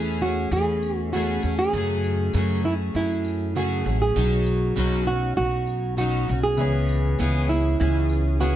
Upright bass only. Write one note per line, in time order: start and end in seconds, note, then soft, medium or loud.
0.00 0.48 E2 loud
0.52 1.39 E2 loud
1.44 1.71 E2 medium
1.73 2.30 F#2 loud
2.34 2.91 F#2 loud
2.95 3.82 F#2 loud
3.86 4.14 A1 loud
4.16 4.73 B1 loud
4.77 5.34 B1 loud
5.38 6.25 B1 loud
6.29 6.60 B1 loud
6.60 7.16 C#2 loud
7.20 7.76 C#2 loud
7.81 8.56 C#2 loud